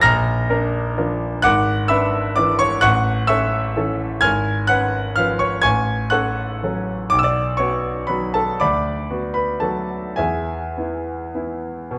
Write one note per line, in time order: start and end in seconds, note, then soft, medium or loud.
0.01 0.48 A#1 medium
0.01 1.40 A#5 loud
0.01 1.39 F6 loud
0.01 1.43 A#6 loud
0.50 0.93 D4 medium
0.50 0.93 A#4 medium
0.97 1.40 F3 medium
0.97 1.40 D4 medium
0.97 1.40 A#4 medium
1.42 1.89 G#1 medium
1.42 1.86 F#5 loud
1.42 1.87 D6 loud
1.42 1.89 F#6 loud
1.88 2.34 D4 medium
1.88 2.34 B4 medium
1.88 2.34 E5 medium
1.88 2.34 B5 medium
1.88 2.37 E6 loud
2.36 2.80 E3 medium
2.36 2.80 D4 medium
2.36 2.80 B4 medium
2.36 2.59 D5 medium
2.36 2.60 D6 loud
2.59 2.82 C#5 medium
2.59 2.81 C#6 loud
2.81 3.28 A1 medium
2.81 3.26 F#5 loud
2.81 3.26 C#6 loud
2.81 3.28 F#6 loud
3.27 3.73 C#4 medium
3.27 3.73 A4 medium
3.27 4.19 E5 medium
3.27 4.19 C#6 medium
3.27 4.22 E6 loud
3.76 4.19 E3 medium
3.76 4.19 C#4 medium
3.76 4.19 A4 medium
4.21 4.68 G#1 medium
4.21 4.65 G#5 medium
4.21 4.65 F6 loud
4.21 4.68 G#6 loud
4.67 5.14 C#4 medium
4.67 5.14 B4 medium
4.67 5.14 F#5 loud
4.67 5.17 F#6 loud
5.16 5.60 F3 medium
5.16 5.61 C#4 medium
5.16 5.61 B4 medium
5.16 5.39 F5 medium
5.16 5.40 F6 loud
5.39 5.62 C#5 medium
5.39 5.61 C#6 loud
5.62 6.10 A1 medium
5.62 6.07 G#5 loud
5.62 6.07 C#6 medium
5.62 6.10 G#6 loud
6.10 6.59 C#4 medium
6.10 6.59 A4 medium
6.10 7.07 F#5 medium
6.10 7.07 C#6 medium
6.10 7.11 F#6 loud
6.63 7.08 F#3 medium
6.63 7.08 C#4 medium
6.63 7.08 A4 medium
7.10 7.57 B1 medium
7.10 7.17 D6 loud
7.19 7.25 E6 medium
7.23 7.56 D5 medium
7.23 7.58 D6 loud
7.57 8.05 B3 medium
7.57 8.05 F#4 medium
7.57 8.05 C#5 medium
7.57 8.08 C#6 medium
8.07 8.58 F#3 medium
8.07 8.58 B3 soft
8.07 8.58 F#4 medium
8.07 8.33 B4 medium
8.07 8.34 B5 medium
8.34 8.60 A4 medium
8.34 8.61 A5 medium
8.60 9.09 D2 medium
8.60 9.31 D5 medium
8.60 9.31 B5 medium
8.60 9.35 D6 loud
9.10 9.58 B3 medium
9.10 9.58 F#4 medium
9.34 9.60 B4 medium
9.34 9.61 B5 medium
9.60 10.14 F#3 soft
9.60 10.14 B3 soft
9.60 10.14 F#4 medium
9.60 10.14 A4 medium
9.60 10.17 A5 medium
10.16 10.76 E2 medium
10.16 11.98 G#4 medium
10.16 11.98 E5 medium
10.16 11.98 G#5 medium
10.77 11.31 B3 soft
10.77 11.32 E4 soft
11.35 11.87 B3 soft
11.35 11.87 E4 medium
11.91 11.98 B2 medium